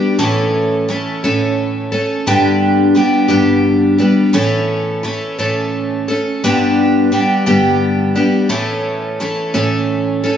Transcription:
0.00 0.18 G3 medium
0.00 0.18 B3 medium
0.00 0.18 D4 medium
0.00 0.19 G4 medium
0.19 0.88 A2 medium
0.19 0.87 E3 medium
0.19 0.88 A3 loud
0.19 0.88 C#4 loud
0.19 0.89 A4 loud
0.89 1.23 E3 medium
0.89 1.23 A3 medium
0.89 1.23 C#4 medium
0.89 1.23 A4 medium
1.24 1.93 A2 medium
1.24 1.93 E3 medium
1.24 1.93 A3 medium
1.24 1.92 C#4 medium
1.24 1.91 A4 medium
1.92 2.27 A3 medium
1.92 2.27 C#4 medium
1.92 2.27 A4 medium
2.27 2.96 G2 medium
2.27 2.96 D3 medium
2.27 2.93 G3 medium
2.27 2.94 B3 medium
2.27 2.95 D4 loud
2.27 2.96 G4 loud
2.95 3.29 G3 medium
2.95 3.29 B3 medium
2.95 3.28 D4 medium
2.95 3.27 G4 medium
3.28 3.99 G2 medium
3.28 3.99 D3 medium
3.28 3.99 G3 medium
3.28 3.99 B3 medium
3.28 3.98 D4 medium
3.28 3.97 G4 medium
3.98 4.33 G3 medium
3.98 4.34 B3 medium
3.98 4.34 D4 medium
3.98 4.34 G4 medium
4.33 5.03 A2 medium
4.33 5.02 E3 medium
4.33 5.03 A3 medium
4.33 5.03 C#4 loud
4.33 5.04 A4 medium
5.03 5.38 E3 medium
5.03 5.38 A3 medium
5.03 5.38 C#4 medium
5.03 5.37 A4 medium
5.39 6.08 A2 medium
5.39 6.08 E3 medium
5.39 6.08 A3 medium
5.39 6.08 C#4 medium
5.39 6.07 A4 medium
6.08 6.43 A3 soft
6.08 6.43 C#4 medium
6.08 6.42 A4 medium
6.44 7.12 G2 medium
6.44 7.12 D3 medium
6.44 7.11 G3 medium
6.44 7.11 B3 medium
6.44 7.12 D4 medium
6.44 7.12 G4 loud
7.12 7.46 G3 medium
7.12 7.46 B3 medium
7.12 7.45 D4 medium
7.12 7.45 G4 medium
7.46 8.16 G2 medium
7.46 8.16 D3 medium
7.46 8.16 G3 medium
7.46 8.15 B3 medium
7.46 8.14 D4 medium
7.46 8.15 G4 medium
8.16 8.49 G3 medium
8.16 8.49 B3 medium
8.16 8.49 D4 medium
8.16 8.50 G4 medium
8.49 9.19 A2 medium
8.49 9.19 E3 medium
8.49 9.19 A3 loud
8.49 9.19 C#4 medium
8.49 9.19 A4 loud
9.20 9.54 E3 medium
9.20 9.53 A3 medium
9.20 9.53 C#4 medium
9.20 9.53 A4 medium
9.54 10.24 A2 medium
9.54 10.24 E3 medium
9.54 10.23 A3 medium
9.54 10.23 C#4 medium
9.54 10.22 A4 medium
10.24 10.37 A3 medium
10.24 10.37 C#4 medium
10.24 10.37 A4 medium

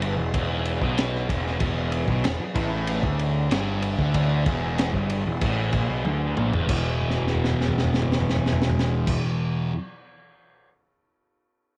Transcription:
0.00 0.15 G1 loud
0.00 0.16 G2 loud
0.00 6.65 E3 medium
0.00 6.65 B3 medium
0.00 6.65 G#4 medium
0.00 ride medium
0.17 0.33 E1 medium
0.17 0.33 E2 medium
0.34 0.78 E1 loud
0.34 0.81 E2 loud
0.34 kick loud
0.34 ride loud
0.65 ride medium
0.81 1.25 B1 loud
0.81 1.28 B2 loud
0.81 kick medium
0.98 snare loud
0.98 ride loud
1.15 snare soft
1.29 1.59 E1 medium
1.29 1.58 E2 loud
1.29 kick loud
1.29 ride medium
1.47 snare soft
1.59 2.05 E1 medium
1.59 2.06 E2 loud
1.59 kick loud
1.59 ride loud
1.92 ride medium
2.08 2.23 B1 medium
2.08 2.24 B2 loud
2.08 kick loud
2.24 2.38 E1 medium
2.24 2.39 E2 medium
2.24 snare loud
2.24 ride loud
2.38 muted picked electric bass stroke soft
2.38 muted distorted electric guitar stroke medium
2.55 3.00 A1 loud
2.55 3.02 A2 loud
2.55 kick loud
2.55 ride medium
2.87 ride loud
3.03 3.48 D2 loud
3.03 3.51 D3 loud
3.03 kick loud
3.19 ride medium
3.50 3.95 G1 loud
3.50 3.97 G2 loud
3.50 snare loud
3.50 ride loud
3.82 ride medium
3.98 4.43 D2 medium
3.98 4.46 D3 loud
3.98 kick loud
4.14 kick loud
4.14 ride loud
4.46 4.90 E1 loud
4.46 4.93 E2 loud
4.46 kick loud
4.46 ride medium
4.78 snare loud
4.78 ride medium
4.93 5.23 G1 medium
4.93 5.24 G2 loud
4.93 kick medium
5.10 ride medium
5.26 5.41 E1 medium
5.26 5.42 E2 medium
5.41 5.71 A1 loud
5.41 5.72 A2 loud
5.41 kick loud
5.41 ride loud
5.73 5.88 A#1 medium
5.73 5.88 A#2 loud
5.73 kick loud
5.73 ride medium
5.89 6.04 B1 loud
5.89 6.03 B2 loud
6.04 6.35 D2 loud
6.04 6.35 D3 loud
6.04 high tom medium
6.36 6.51 A#1 medium
6.36 6.52 A#2 loud
6.36 mid tom loud
6.52 6.67 E1 medium
6.52 6.66 E2 loud
6.52 floor tom medium
6.67 9.16 E1 medium
6.67 9.71 E2 medium
6.67 9.71 B2 medium
6.67 9.15 E3 medium
6.67 9.16 B3 medium
6.67 9.16 G#4 medium
6.67 kick loud
6.67 crash loud
6.71 9.71 E3 loud
7.01 floor tom soft
7.10 snare soft
7.18 floor tom medium
7.27 snare medium
7.35 floor tom medium
7.44 snare medium
7.51 floor tom medium
7.61 snare medium
7.68 floor tom medium
7.78 snare medium
7.84 floor tom medium
7.94 snare medium
8.02 floor tom medium
8.12 snare medium
8.21 floor tom medium
8.29 snare medium
8.36 floor tom medium
8.46 snare medium
8.52 floor tom medium
8.62 snare medium
8.69 floor tom medium
8.79 snare medium
9.07 kick loud
9.07 crash loud

